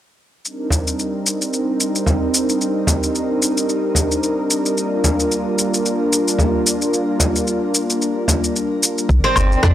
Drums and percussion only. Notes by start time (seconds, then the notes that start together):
0.45 shaker
0.70 frame drum, shaker
0.87 shaker
0.99 shaker
1.26 shaker
1.42 shaker
1.53 shaker
1.80 shaker
1.96 shaker
2.06 frame drum, shaker
2.34 shaker
2.49 shaker
2.61 shaker
2.87 frame drum, shaker
3.03 shaker
3.15 shaker
3.42 shaker
3.57 shaker
3.69 shaker
3.95 frame drum, shaker
4.11 shaker
4.23 shaker
4.50 shaker
4.66 shaker
4.77 shaker
5.04 frame drum, shaker
5.20 shaker
5.32 shaker
5.58 shaker
5.74 shaker
5.86 shaker
6.13 shaker
6.28 shaker
6.38 frame drum, shaker
6.66 shaker
6.82 shaker
6.93 shaker
7.20 frame drum, shaker
7.36 shaker
7.47 shaker
7.74 shaker
7.90 shaker
8.02 shaker
8.28 frame drum, shaker
8.44 shaker
8.56 shaker
8.83 shaker
8.98 shaker
9.09 kick, shaker
9.36 frame drum, low woodblock, shaker
9.52 shaker
9.63 kick, cross-stick, shaker